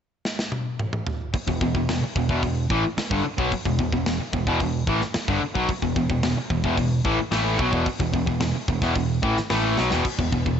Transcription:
0.25 snare
0.39 snare
0.52 high tom
0.79 mid tom
0.93 mid tom
1.07 floor tom
1.34 muted picked electric bass stroke, muted overdriven electric guitar stroke, muted distorted electric guitar stroke, kick, open hi-hat
1.47 E1 E2 B2, kick
1.61 E1 E2 B2, kick
1.75 E1 E2 B2, kick
1.88 E1 E2 B2, snare, open hi-hat
2.03 muted picked electric bass stroke, muted distorted electric guitar stroke, muted overdriven electric guitar stroke
2.16 E1 E2 B2, kick
2.29 E1 E2 B2, kick
2.43 E1 E2 B2, kick, open hi-hat
2.70 A1 A2 E3, kick
2.84 muted distorted electric guitar stroke, muted picked electric bass stroke, muted overdriven electric guitar stroke
2.97 muted distorted electric guitar stroke, muted picked electric bass stroke, muted overdriven electric guitar stroke, snare, open hi-hat
3.11 G1 G2 D3, kick
3.24 muted picked electric bass stroke, muted distorted electric guitar stroke, muted overdriven electric guitar stroke
3.38 B1 B2 F#3, kick
3.52 muted distorted electric guitar stroke, muted picked electric bass stroke, muted overdriven electric guitar stroke, kick, open hi-hat
3.65 E1 E2 B2, kick
3.79 E1 E2 B2, kick
3.92 E1 E2 B2, kick
4.06 E1 E2 B2, snare, open hi-hat
4.20 muted picked electric bass stroke, muted overdriven electric guitar stroke, muted distorted electric guitar stroke
4.33 E1 E2 B2, kick
4.46 E1 E2 B2, kick
4.60 E1 E2 B2, kick, open hi-hat
4.87 A1 A2 E3, kick
5.01 muted distorted electric guitar stroke, muted overdriven electric guitar stroke, muted picked electric bass stroke, snare
5.14 muted overdriven electric guitar stroke, muted distorted electric guitar stroke, muted picked electric bass stroke, snare, open hi-hat
5.28 G1 G2 D3, kick
5.42 muted overdriven electric guitar stroke, muted picked electric bass stroke, muted distorted electric guitar stroke
5.55 B1 B2 F#3, kick
5.69 muted overdriven electric guitar stroke, muted picked electric bass stroke, muted distorted electric guitar stroke, kick, open hi-hat
5.82 E1 E2 B2, kick
5.96 E1 E2 B2, kick
6.10 E1 E2 B2, kick
6.23 E1 E2 B2, snare, open hi-hat
6.36 muted picked electric bass stroke, muted overdriven electric guitar stroke, muted distorted electric guitar stroke
6.50 E1 E2 B2, kick
6.63 E1 E2 B2, kick
6.77 E1 E2 B2, kick, open hi-hat
7.04 A1 A2 E3, kick
7.18 muted overdriven electric guitar stroke, muted distorted electric guitar stroke, muted picked electric bass stroke
7.31 A1 A2 E3 A3, snare, open hi-hat
7.58 B1 B2 F#3, kick
7.71 E1 E2 B2, kick
7.86 muted picked electric bass stroke, muted overdriven electric guitar stroke, muted distorted electric guitar stroke, kick, open hi-hat
7.99 E1 E2 B2, kick
8.13 E1 E2 B2, kick
8.26 E1 E2 B2, kick
8.40 E1 E2 B2, snare, open hi-hat
8.54 muted overdriven electric guitar stroke, muted picked electric bass stroke, muted distorted electric guitar stroke
8.68 E1 E2 B2, kick
8.82 E1 E2 B2, kick, snare
8.95 E1 E2 B2, kick, open hi-hat
9.22 A1 A2 E3, kick
9.37 muted overdriven electric guitar stroke, muted distorted electric guitar stroke, muted picked electric bass stroke, snare
9.50 A1 A2 E3 A3, snare, open hi-hat
9.77 B1 B2 F#3, snare
9.91 E1 E2 B2, snare
10.05 muted picked electric bass stroke, muted distorted electric guitar stroke, muted overdriven electric guitar stroke, kick, open hi-hat, crash
10.19 E1 E2 B2, kick
10.32 E1 E2 B2, kick
10.46 E1 E2 B2, kick

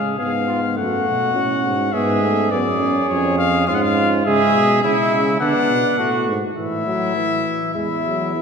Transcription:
Already playing: C#3 G#3 G#4 F5
0.18 G#2 B3 G#4 F5
0.48 F4
0.77 F#2 A3 F#4 F#5
1.08 B2
1.34 A2 C#4
1.65 G#2
1.92 G#2 B3 G#4 E5
2.22 A3
2.51 F#2 B3 G#4 D5
2.80 C#4
3.09 F2 C#5
3.38 F5
3.67 G#2 C#4 F4 F5
3.75 F#5
3.82 F5
4.25 C#3 G#3 G#4 E5
4.55 B2
4.82 C#3 G#3 E4 E5
5.12 C#3
5.40 D3 B3 D4 F#5
5.70 B2
5.98 A2 A3 F#4
6.28 G#2
6.56 A2 E3 E4 E5
6.86 F#3
7.16 E3
7.74 E2 G#3 E4 E5
8.05 F#3
8.35 E3

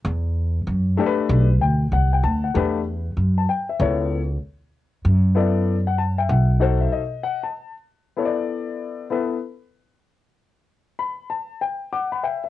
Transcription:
0.05 E2
0.67 F#2
0.97 A3 D4 G4 A4
1.06 B4
1.29 B1
1.61 D2 G5
1.92 C2 F#5
2.13 G5
2.23 D2 A5
2.44 F#5
2.54 E2 A3 D4 G4 B4
3.17 F#2
3.38 A5
3.49 G5
3.69 E5
3.79 C#2 B3 E4 A4 C#5
5.05 F#2
5.35 B3 E4 A4 D5
5.87 F#5
5.98 A5
6.18 E5 G5
6.29 B1 F#5
6.60 D#4 F#4 A4 C5 F#5
6.81 E5
6.92 D#5
7.23 F#5
7.43 A5
8.17 B3 E4 A4 C#5
8.25 D5
9.10 B3 E4 A4 B4
10.99 B5
11.30 A5
11.61 G5
11.92 F#5 D6
12.12 F#5 B5
12.23 E5 G5
12.44 E5

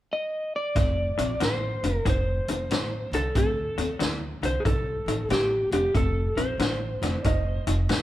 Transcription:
0.13 D#5
0.56 D5
0.75 F1 F2 C3, kick, snare, closed hi-hat
1.18 A#1 F2 C3, closed hi-hat
1.40 A1 F2 D3, snare, closed hi-hat
1.44 C5
1.83 F1 F2 D3, closed hi-hat
1.93 A#4
2.05 F1 F2 D#3, kick, closed hi-hat
2.10 C5
2.48 F1 F2 D#3, closed hi-hat
2.69 A1 F2 D3, snare, closed hi-hat
3.11 C2 F2 D3 A4, closed hi-hat
3.35 D2 F2 C3 A4, kick, closed hi-hat
3.77 D#2 F2 C3, closed hi-hat
3.99 D2 F2 D3, snare, closed hi-hat
4.42 C2 F2 D3 C5, closed hi-hat
4.60 G#4
4.65 C2 F2 D#3 A4, kick, closed hi-hat
5.06 A1 F2 D#3, closed hi-hat
5.29 A1 F2 D3 G4, snare, closed hi-hat
5.71 F1 F2 D3 G4, closed hi-hat
5.94 F1 F2 C3 A4, kick, closed hi-hat
6.36 A#1 F2 C3 C5, closed hi-hat
6.58 A1 F2 D3, snare, closed hi-hat
7.02 F1 F2 D3, snare, closed hi-hat
7.22 F1 F2 D#3 D5, kick, closed hi-hat
7.26 D#5
7.67 F1 F2 D#3, closed hi-hat
7.89 A1 F2 D3, snare, closed hi-hat

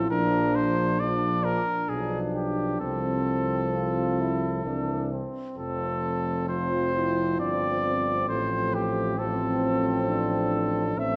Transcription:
Already playing: E4 A4
0.10 A#1 F3 D4 A#4
0.55 C5
1.00 F3 D4 D5
1.45 A#4
1.89 B1 F3 D4 G#4
2.34 G4
2.80 C2 F3 C4 A4
3.73 F4
4.20 E4
4.64 C2 E3 D4
5.13 C4
5.57 F1 F3 C4 A4
6.48 F3 C4 F4 C5
6.95 E4
7.39 G1 D4 D5
7.84 C4
8.29 A1 F3 A3 C4 C5
8.75 G4
9.18 F3 C4 A4
10.08 D4
10.97 A1 A3 C4 E5

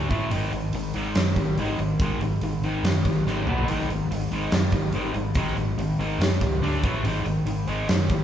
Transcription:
0.10 A1 A2 E3 A3, kick, open hi-hat
0.31 G#1 G#2 D#3 G#3, open hi-hat
0.52 G#1 G#2 D#3, open hi-hat
0.73 G#1 G#2 D#3, open hi-hat
0.94 G#1 G#2 D#3 G#3, open hi-hat
1.15 F#2 G#2 D#3, snare, open hi-hat
1.36 G#1 G#2 D#3, kick, open hi-hat
1.58 G#1 G#2 D#3 G#3, open hi-hat
1.78 G#1 G#2 D#3, open hi-hat
2.00 G#1 G#2 D#3 G#3, kick, open hi-hat
2.19 G#1 G#2 D#3, open hi-hat
2.41 G#1 G#2 D#3, open hi-hat
2.61 G#1 G#2 D#3 G#3, open hi-hat
2.83 F#2 G#2 D#3, snare, open hi-hat
3.05 G#1 G#2 D#3, kick, open hi-hat
3.25 G#1 G#2 D#3 G#3, snare
3.46 B1 B2 F#3 B3, mid tom
3.58 floor tom
3.67 G#1 G#2 D#3 G#3, open hi-hat
3.80 snare
3.89 G#1 G#2 D#3, open hi-hat
4.10 G#1 G#2 D#3, open hi-hat
4.31 G#1 G#2 D#3 G#3, open hi-hat
4.52 F#2 G#2 D#3, snare, open hi-hat
4.72 G#1 G#2 D#3, kick, open hi-hat
4.93 G#1 G#2 D#3 G#3, open hi-hat
5.14 G#1 G#2 D#3, open hi-hat
5.35 G#1 G#2 D#3 G#3, kick, open hi-hat
5.47 snare
5.56 G#1 G#2 D#3, open hi-hat
5.77 G#1 G#2 D#3, open hi-hat
5.99 G#1 G#2 D#3 G#3, open hi-hat
6.18 F#2 G#2 D#3, snare, open hi-hat
6.41 C#2 G#2 D#3, kick, open hi-hat
6.62 D2 D3 A3 D4, open hi-hat
6.83 A1 A2 E3 A3, kick, open hi-hat
7.04 G#1 G#2 D#3 G#3, open hi-hat
7.25 G#1 G#2 D#3, open hi-hat
7.45 G#1 G#2 D#3, open hi-hat
7.67 G#1 G#2 D#3 G#3, open hi-hat
7.88 F#2 G#2 D#3, snare, open hi-hat
8.10 G#1 G#2 D#3, kick, open hi-hat

